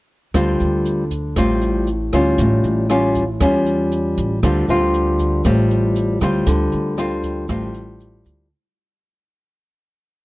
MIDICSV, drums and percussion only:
0, 0, Header, 1, 2, 480
1, 0, Start_track
1, 0, Key_signature, -1, "minor"
1, 0, Tempo, 510638
1, 322, Time_signature, 4, 2, 24, 8
1, 9626, End_track
2, 0, Start_track
2, 0, Title_t, "Drums"
2, 322, Note_on_c, 9, 37, 54
2, 322, Note_on_c, 9, 42, 49
2, 323, Note_on_c, 9, 36, 57
2, 416, Note_off_c, 9, 37, 0
2, 416, Note_off_c, 9, 42, 0
2, 417, Note_off_c, 9, 36, 0
2, 565, Note_on_c, 9, 42, 36
2, 659, Note_off_c, 9, 42, 0
2, 802, Note_on_c, 9, 42, 42
2, 896, Note_off_c, 9, 42, 0
2, 1041, Note_on_c, 9, 42, 42
2, 1042, Note_on_c, 9, 36, 19
2, 1135, Note_off_c, 9, 42, 0
2, 1136, Note_off_c, 9, 36, 0
2, 1280, Note_on_c, 9, 37, 49
2, 1280, Note_on_c, 9, 42, 52
2, 1282, Note_on_c, 9, 36, 52
2, 1374, Note_off_c, 9, 37, 0
2, 1374, Note_off_c, 9, 42, 0
2, 1376, Note_off_c, 9, 36, 0
2, 1519, Note_on_c, 9, 42, 44
2, 1613, Note_off_c, 9, 42, 0
2, 1758, Note_on_c, 9, 42, 37
2, 1852, Note_off_c, 9, 42, 0
2, 2000, Note_on_c, 9, 37, 51
2, 2000, Note_on_c, 9, 42, 38
2, 2001, Note_on_c, 9, 36, 22
2, 2094, Note_off_c, 9, 37, 0
2, 2094, Note_off_c, 9, 42, 0
2, 2095, Note_off_c, 9, 36, 0
2, 2238, Note_on_c, 9, 42, 51
2, 2241, Note_on_c, 9, 36, 55
2, 2332, Note_off_c, 9, 42, 0
2, 2335, Note_off_c, 9, 36, 0
2, 2481, Note_on_c, 9, 42, 34
2, 2575, Note_off_c, 9, 42, 0
2, 2722, Note_on_c, 9, 37, 53
2, 2722, Note_on_c, 9, 42, 41
2, 2816, Note_off_c, 9, 37, 0
2, 2816, Note_off_c, 9, 42, 0
2, 2960, Note_on_c, 9, 42, 38
2, 2962, Note_on_c, 9, 36, 21
2, 3054, Note_off_c, 9, 42, 0
2, 3056, Note_off_c, 9, 36, 0
2, 3201, Note_on_c, 9, 37, 56
2, 3201, Note_on_c, 9, 42, 47
2, 3202, Note_on_c, 9, 36, 53
2, 3295, Note_off_c, 9, 37, 0
2, 3295, Note_off_c, 9, 42, 0
2, 3296, Note_off_c, 9, 36, 0
2, 3442, Note_on_c, 9, 42, 37
2, 3536, Note_off_c, 9, 42, 0
2, 3683, Note_on_c, 9, 42, 38
2, 3777, Note_off_c, 9, 42, 0
2, 3924, Note_on_c, 9, 36, 22
2, 3925, Note_on_c, 9, 42, 40
2, 4018, Note_off_c, 9, 36, 0
2, 4019, Note_off_c, 9, 42, 0
2, 4165, Note_on_c, 9, 36, 59
2, 4165, Note_on_c, 9, 37, 56
2, 4165, Note_on_c, 9, 42, 51
2, 4165, Note_on_c, 9, 82, 59
2, 4259, Note_off_c, 9, 36, 0
2, 4259, Note_off_c, 9, 37, 0
2, 4259, Note_off_c, 9, 42, 0
2, 4259, Note_off_c, 9, 82, 0
2, 4402, Note_on_c, 9, 82, 22
2, 4408, Note_on_c, 9, 42, 39
2, 4496, Note_off_c, 9, 82, 0
2, 4502, Note_off_c, 9, 42, 0
2, 4643, Note_on_c, 9, 42, 39
2, 4737, Note_off_c, 9, 42, 0
2, 4879, Note_on_c, 9, 82, 57
2, 4881, Note_on_c, 9, 42, 38
2, 4882, Note_on_c, 9, 36, 21
2, 4973, Note_off_c, 9, 82, 0
2, 4975, Note_off_c, 9, 42, 0
2, 4976, Note_off_c, 9, 36, 0
2, 5115, Note_on_c, 9, 82, 63
2, 5121, Note_on_c, 9, 37, 52
2, 5121, Note_on_c, 9, 42, 50
2, 5122, Note_on_c, 9, 36, 47
2, 5209, Note_off_c, 9, 82, 0
2, 5215, Note_off_c, 9, 37, 0
2, 5215, Note_off_c, 9, 42, 0
2, 5216, Note_off_c, 9, 36, 0
2, 5361, Note_on_c, 9, 42, 39
2, 5362, Note_on_c, 9, 82, 26
2, 5455, Note_off_c, 9, 42, 0
2, 5456, Note_off_c, 9, 82, 0
2, 5598, Note_on_c, 9, 82, 49
2, 5600, Note_on_c, 9, 42, 41
2, 5692, Note_off_c, 9, 82, 0
2, 5694, Note_off_c, 9, 42, 0
2, 5833, Note_on_c, 9, 82, 52
2, 5840, Note_on_c, 9, 36, 24
2, 5841, Note_on_c, 9, 37, 52
2, 5841, Note_on_c, 9, 42, 43
2, 5927, Note_off_c, 9, 82, 0
2, 5934, Note_off_c, 9, 36, 0
2, 5935, Note_off_c, 9, 37, 0
2, 5935, Note_off_c, 9, 42, 0
2, 6077, Note_on_c, 9, 82, 62
2, 6078, Note_on_c, 9, 42, 56
2, 6080, Note_on_c, 9, 36, 50
2, 6171, Note_off_c, 9, 82, 0
2, 6172, Note_off_c, 9, 42, 0
2, 6174, Note_off_c, 9, 36, 0
2, 6316, Note_on_c, 9, 82, 24
2, 6317, Note_on_c, 9, 42, 35
2, 6410, Note_off_c, 9, 82, 0
2, 6411, Note_off_c, 9, 42, 0
2, 6553, Note_on_c, 9, 82, 44
2, 6560, Note_on_c, 9, 37, 51
2, 6560, Note_on_c, 9, 42, 37
2, 6647, Note_off_c, 9, 82, 0
2, 6654, Note_off_c, 9, 37, 0
2, 6654, Note_off_c, 9, 42, 0
2, 6796, Note_on_c, 9, 82, 62
2, 6800, Note_on_c, 9, 36, 20
2, 6802, Note_on_c, 9, 42, 40
2, 6890, Note_off_c, 9, 82, 0
2, 6894, Note_off_c, 9, 36, 0
2, 6896, Note_off_c, 9, 42, 0
2, 7033, Note_on_c, 9, 82, 59
2, 7041, Note_on_c, 9, 36, 49
2, 7041, Note_on_c, 9, 37, 50
2, 7041, Note_on_c, 9, 42, 48
2, 7127, Note_off_c, 9, 82, 0
2, 7135, Note_off_c, 9, 36, 0
2, 7135, Note_off_c, 9, 37, 0
2, 7135, Note_off_c, 9, 42, 0
2, 7276, Note_on_c, 9, 82, 23
2, 7280, Note_on_c, 9, 42, 35
2, 7370, Note_off_c, 9, 82, 0
2, 7374, Note_off_c, 9, 42, 0
2, 7522, Note_on_c, 9, 42, 37
2, 7616, Note_off_c, 9, 42, 0
2, 7754, Note_on_c, 9, 82, 55
2, 7763, Note_on_c, 9, 36, 23
2, 7764, Note_on_c, 9, 42, 40
2, 7848, Note_off_c, 9, 82, 0
2, 7857, Note_off_c, 9, 36, 0
2, 7858, Note_off_c, 9, 42, 0
2, 9626, End_track
0, 0, End_of_file